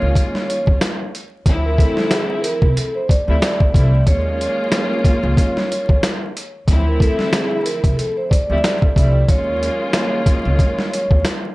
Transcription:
Already playing: D#2 F#3 G#3 A#3 C#4 F4 C#5
0.02 C#2
0.15 kick, closed hi-hat
0.35 snare
0.48 C#5, closed hi-hat
0.67 D#2, kick
0.81 snare, closed hi-hat
1.15 closed hi-hat
1.46 D2 E3 F3 C4 E4, kick, closed hi-hat
1.65 A#4
1.78 A4, kick, closed hi-hat
1.97 snare
2.10 G#4, snare, closed hi-hat
2.42 A#4, closed hi-hat
2.62 C2, kick
2.77 A4, closed hi-hat
2.95 C5
3.08 D5, kick, closed hi-hat
3.27 D2 F3 G3 A3 C4 E4
3.39 D2 F3 G3 A3 C4 E4, snare, closed hi-hat
3.60 kick
3.72 C2 D2 F3 G3 A3 C4 E4, kick, closed hi-hat
4.07 D#2 F#3 G#3 A#3 C#4 F4 C#5, kick, closed hi-hat
4.41 closed hi-hat
4.72 snare, closed hi-hat
5.04 kick, closed hi-hat
5.23 C#2
5.37 kick, closed hi-hat
5.57 snare
5.71 C#5, closed hi-hat
5.89 D#2, kick
6.03 snare, closed hi-hat
6.37 closed hi-hat
6.68 D2 E3 F3 C4 E4, kick, closed hi-hat
6.87 A#4
7.00 A4, kick, closed hi-hat
7.19 snare
7.33 G#4, snare, closed hi-hat
7.64 A#4, closed hi-hat
7.84 C2, kick, closed hi-hat
7.97 A4, closed hi-hat
8.17 C5
8.30 D5, kick, closed hi-hat
8.49 D2 F3 G3 A3 C4 E4
8.61 D2 F3 G3 A3 C4 E4, snare, closed hi-hat
8.82 kick
8.94 C2 D2 F3 G3 A3 C4 E4, kick, closed hi-hat
9.28 D#2 F#3 G#3 A#3 C#4 F4 C#5, kick, closed hi-hat
9.63 closed hi-hat
9.93 snare, closed hi-hat
10.26 kick, closed hi-hat
10.45 C#2
10.59 kick, closed hi-hat
10.79 snare
10.92 C#5, closed hi-hat
11.11 D#2, kick
11.25 snare, closed hi-hat

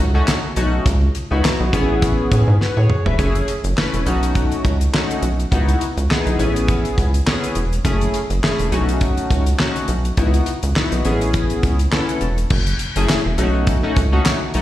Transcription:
0.00 C#2
0.14 A3 C#4 D#4 F#4
0.27 snare, clap, closed hi-hat
0.56 B1 A3 C#4 D#4 F#4, closed hi-hat
0.86 C#2, kick, closed hi-hat
1.15 closed hi-hat
1.31 C#2 B3 D#4 E4 F#4
1.44 snare, clap, closed hi-hat
1.60 B1
1.72 A1 B3 C#4 E4 G#4, kick, closed hi-hat
2.02 kick, closed hi-hat
2.31 A2, kick, closed hi-hat
2.48 G#2
2.61 F#4 B4, snare
2.77 A2 G#4 C#5
2.90 mid tom
3.06 E1 B4 E5, floor tom
3.18 F#1 A3 C#4 E4 G#4, kick, closed hi-hat
3.35 closed hi-hat
3.48 closed hi-hat
3.64 F#1, closed hi-hat
3.76 A3 C#4 E4 B4, snare, clap
3.93 E1, closed hi-hat
4.06 B1 A3 C#4 D#4 F#4, closed hi-hat
4.23 closed hi-hat
4.35 kick, closed hi-hat
4.52 closed hi-hat
4.65 C#2, kick, closed hi-hat
4.81 closed hi-hat
4.93 A3 C#4 D#4 F#4, snare, clap
5.11 closed hi-hat
5.22 B1, closed hi-hat
5.40 closed hi-hat
5.51 C#2 B3 D#4 E4 F#4, kick, closed hi-hat
5.69 closed hi-hat
5.81 closed hi-hat
5.97 C#2, closed hi-hat
6.09 B3 D#4 E4 G#4, snare, clap
6.26 B1, closed hi-hat
6.39 A1 B3 C#4 E4 G#4, closed hi-hat
6.56 closed hi-hat
6.68 kick, closed hi-hat
6.85 closed hi-hat
6.98 C#2, kick, closed hi-hat
7.14 closed hi-hat
7.26 B3 C#4 E4 G#4, snare, clap
7.44 closed hi-hat
7.55 E1, closed hi-hat
7.73 closed hi-hat
7.84 F#1 A3 C#4 E4 G#4, kick, closed hi-hat
8.01 closed hi-hat
8.14 closed hi-hat
8.30 F#1, closed hi-hat
8.43 A3 C#4 E4 G#4, snare, clap
8.59 E1, closed hi-hat
8.72 B1 A3 C#4 D#4 F#4, closed hi-hat
8.89 closed hi-hat
9.01 kick, closed hi-hat
9.17 closed hi-hat
9.30 C#2, kick, closed hi-hat
9.46 closed hi-hat
9.59 A3 C#4 D#4 F#4, snare, clap
9.76 closed hi-hat
9.88 B1, closed hi-hat
10.05 closed hi-hat
10.17 C#2 B3 D#4 E4 F#4, kick, closed hi-hat
10.34 closed hi-hat
10.46 closed hi-hat
10.63 C#2, closed hi-hat
10.76 B3 D#4 E4 F#4, snare, clap
10.92 B1, closed hi-hat
11.05 A1 B3 C#4 E4 G#4, closed hi-hat
11.21 closed hi-hat
11.33 kick, closed hi-hat
11.50 closed hi-hat
11.63 C#2, kick, closed hi-hat
11.79 closed hi-hat
11.92 B3 C#4 E4 A4, snare, clap
12.09 closed hi-hat
12.21 E1, closed hi-hat
12.38 closed hi-hat
12.50 F#1, kick, crash
12.67 closed hi-hat
12.79 closed hi-hat
12.96 F#1 A3 C#4 E4 G#4, closed hi-hat
13.08 snare, clap, closed hi-hat
13.25 E1
13.38 B1 A3 C#4 D#4 F#4, closed hi-hat
13.67 kick, closed hi-hat
13.83 A3 C#4 D#4 F#4
13.96 C#2, kick, closed hi-hat
14.12 A3 C#4 D#4 F#4
14.25 snare, clap, closed hi-hat
14.54 B1 A3 C#4 D#4 F#4, closed hi-hat

